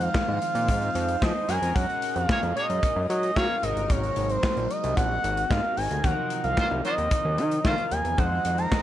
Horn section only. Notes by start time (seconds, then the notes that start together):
2.29 A#3 G#4 C#5
2.56 A#3 G#4 C#5
3.36 A#3 G#4 C#5
6.58 F#3 F4 C5
6.85 F#3 F4 C5
7.65 F#3 F4 C5